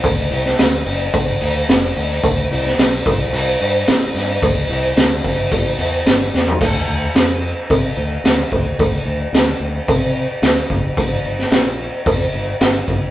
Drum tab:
CC |x-x-x-x-x-x-x-x-|x-x-x-x-x-x-x-x-|x-x-x-x-x-x-x---|x---x---x---x---|
SD |---oo-------o---|---oo-------o-o-|----o-------o-o-|----o-------o---|
FT |----------------|----------------|---------------o|----------------|
BD |o-------o-------|o-----o---------|o-----o-o-------|o-------o-----o-|

CC |x---x---x---x---|x---x---x---x---|
SD |----o-------o---|---oo-------o---|
FT |----------------|----------------|
BD |o-------o-----o-|o-------o-----o-|